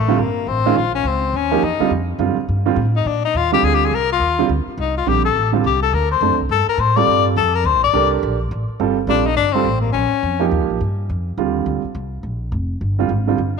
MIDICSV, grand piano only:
0, 0, Header, 1, 2, 480
1, 0, Start_track
1, 0, Key_signature, -2, "minor"
1, 0, Tempo, 286944
1, 1273, Time_signature, 4, 2, 24, 8
1, 22745, End_track
2, 0, Start_track
2, 0, Title_t, "Grand piano"
2, 0, Program_c, 0, 0
2, 139, Note_on_c, 0, 50, 74
2, 144, Note_on_c, 0, 60, 73
2, 145, Note_on_c, 0, 55, 68
2, 155, Note_on_c, 0, 65, 82
2, 300, Note_off_c, 0, 50, 0
2, 303, Note_off_c, 0, 55, 0
2, 303, Note_off_c, 0, 60, 0
2, 308, Note_off_c, 0, 65, 0
2, 1102, Note_on_c, 0, 61, 74
2, 1105, Note_on_c, 0, 51, 81
2, 1107, Note_on_c, 0, 56, 74
2, 1114, Note_on_c, 0, 65, 94
2, 1262, Note_off_c, 0, 61, 0
2, 1264, Note_off_c, 0, 51, 0
2, 1265, Note_off_c, 0, 56, 0
2, 1268, Note_off_c, 0, 65, 0
2, 2529, Note_on_c, 0, 53, 67
2, 2535, Note_on_c, 0, 58, 65
2, 2540, Note_on_c, 0, 63, 64
2, 2547, Note_on_c, 0, 67, 71
2, 2697, Note_off_c, 0, 53, 0
2, 2700, Note_off_c, 0, 58, 0
2, 2703, Note_off_c, 0, 63, 0
2, 2706, Note_off_c, 0, 67, 0
2, 3009, Note_on_c, 0, 50, 75
2, 3017, Note_on_c, 0, 65, 81
2, 3022, Note_on_c, 0, 55, 68
2, 3026, Note_on_c, 0, 60, 67
2, 3177, Note_off_c, 0, 50, 0
2, 3181, Note_off_c, 0, 65, 0
2, 3184, Note_off_c, 0, 55, 0
2, 3186, Note_off_c, 0, 60, 0
2, 3667, Note_on_c, 0, 55, 58
2, 3668, Note_on_c, 0, 50, 62
2, 3674, Note_on_c, 0, 65, 70
2, 3675, Note_on_c, 0, 60, 57
2, 3935, Note_off_c, 0, 50, 0
2, 3935, Note_off_c, 0, 55, 0
2, 3938, Note_off_c, 0, 65, 0
2, 3939, Note_off_c, 0, 60, 0
2, 4442, Note_on_c, 0, 50, 74
2, 4449, Note_on_c, 0, 55, 69
2, 4450, Note_on_c, 0, 60, 69
2, 4457, Note_on_c, 0, 65, 81
2, 4614, Note_off_c, 0, 50, 0
2, 4617, Note_off_c, 0, 55, 0
2, 4618, Note_off_c, 0, 60, 0
2, 4621, Note_off_c, 0, 65, 0
2, 5886, Note_on_c, 0, 55, 60
2, 5892, Note_on_c, 0, 50, 65
2, 5893, Note_on_c, 0, 60, 63
2, 5897, Note_on_c, 0, 65, 73
2, 6516, Note_off_c, 0, 55, 0
2, 6519, Note_off_c, 0, 50, 0
2, 6520, Note_off_c, 0, 60, 0
2, 6522, Note_off_c, 0, 65, 0
2, 7336, Note_on_c, 0, 55, 68
2, 7339, Note_on_c, 0, 50, 66
2, 7348, Note_on_c, 0, 60, 63
2, 7350, Note_on_c, 0, 65, 80
2, 7500, Note_off_c, 0, 55, 0
2, 7502, Note_off_c, 0, 50, 0
2, 7506, Note_off_c, 0, 60, 0
2, 7507, Note_off_c, 0, 65, 0
2, 8475, Note_on_c, 0, 50, 57
2, 8475, Note_on_c, 0, 55, 50
2, 8484, Note_on_c, 0, 60, 53
2, 8492, Note_on_c, 0, 67, 62
2, 8737, Note_off_c, 0, 50, 0
2, 8737, Note_off_c, 0, 55, 0
2, 8742, Note_off_c, 0, 60, 0
2, 8746, Note_off_c, 0, 67, 0
2, 9242, Note_on_c, 0, 50, 63
2, 9242, Note_on_c, 0, 55, 54
2, 9254, Note_on_c, 0, 65, 67
2, 9260, Note_on_c, 0, 60, 61
2, 9412, Note_off_c, 0, 50, 0
2, 9412, Note_off_c, 0, 55, 0
2, 9418, Note_off_c, 0, 65, 0
2, 9421, Note_off_c, 0, 60, 0
2, 10403, Note_on_c, 0, 57, 54
2, 10405, Note_on_c, 0, 60, 49
2, 10411, Note_on_c, 0, 62, 47
2, 10414, Note_on_c, 0, 69, 54
2, 10660, Note_off_c, 0, 57, 0
2, 10661, Note_off_c, 0, 60, 0
2, 10664, Note_off_c, 0, 62, 0
2, 10666, Note_off_c, 0, 69, 0
2, 11647, Note_on_c, 0, 55, 66
2, 11651, Note_on_c, 0, 65, 62
2, 11658, Note_on_c, 0, 60, 58
2, 11660, Note_on_c, 0, 69, 75
2, 12274, Note_off_c, 0, 55, 0
2, 12276, Note_off_c, 0, 65, 0
2, 12280, Note_off_c, 0, 60, 0
2, 12280, Note_off_c, 0, 69, 0
2, 13272, Note_on_c, 0, 62, 65
2, 13274, Note_on_c, 0, 69, 72
2, 13278, Note_on_c, 0, 67, 66
2, 13292, Note_on_c, 0, 70, 77
2, 13984, Note_off_c, 0, 62, 0
2, 13985, Note_off_c, 0, 69, 0
2, 13987, Note_off_c, 0, 67, 0
2, 13994, Note_off_c, 0, 70, 0
2, 14717, Note_on_c, 0, 55, 61
2, 14717, Note_on_c, 0, 60, 61
2, 14731, Note_on_c, 0, 65, 55
2, 14732, Note_on_c, 0, 69, 71
2, 14976, Note_off_c, 0, 55, 0
2, 14976, Note_off_c, 0, 60, 0
2, 14982, Note_off_c, 0, 65, 0
2, 14983, Note_off_c, 0, 69, 0
2, 15197, Note_on_c, 0, 55, 63
2, 15199, Note_on_c, 0, 60, 58
2, 15203, Note_on_c, 0, 65, 52
2, 15208, Note_on_c, 0, 69, 61
2, 15456, Note_off_c, 0, 55, 0
2, 15457, Note_off_c, 0, 60, 0
2, 15459, Note_off_c, 0, 65, 0
2, 15462, Note_off_c, 0, 69, 0
2, 15969, Note_on_c, 0, 55, 67
2, 15972, Note_on_c, 0, 60, 59
2, 15978, Note_on_c, 0, 65, 59
2, 15984, Note_on_c, 0, 69, 76
2, 16133, Note_off_c, 0, 55, 0
2, 16135, Note_off_c, 0, 60, 0
2, 16138, Note_off_c, 0, 65, 0
2, 16141, Note_off_c, 0, 69, 0
2, 17388, Note_on_c, 0, 53, 63
2, 17392, Note_on_c, 0, 58, 60
2, 17396, Note_on_c, 0, 63, 57
2, 17399, Note_on_c, 0, 67, 69
2, 18025, Note_off_c, 0, 53, 0
2, 18026, Note_off_c, 0, 58, 0
2, 18029, Note_off_c, 0, 63, 0
2, 18030, Note_off_c, 0, 67, 0
2, 19034, Note_on_c, 0, 50, 55
2, 19037, Note_on_c, 0, 55, 54
2, 19044, Note_on_c, 0, 65, 61
2, 19045, Note_on_c, 0, 60, 50
2, 19746, Note_off_c, 0, 50, 0
2, 19747, Note_off_c, 0, 55, 0
2, 19751, Note_off_c, 0, 60, 0
2, 19751, Note_off_c, 0, 65, 0
2, 21724, Note_on_c, 0, 50, 60
2, 21731, Note_on_c, 0, 60, 58
2, 21739, Note_on_c, 0, 55, 56
2, 21745, Note_on_c, 0, 65, 72
2, 21892, Note_off_c, 0, 50, 0
2, 21895, Note_off_c, 0, 60, 0
2, 21899, Note_off_c, 0, 55, 0
2, 21902, Note_off_c, 0, 65, 0
2, 22202, Note_on_c, 0, 50, 62
2, 22214, Note_on_c, 0, 55, 59
2, 22220, Note_on_c, 0, 60, 63
2, 22228, Note_on_c, 0, 65, 69
2, 22371, Note_off_c, 0, 50, 0
2, 22377, Note_off_c, 0, 55, 0
2, 22380, Note_off_c, 0, 60, 0
2, 22383, Note_off_c, 0, 65, 0
2, 22745, End_track
0, 0, End_of_file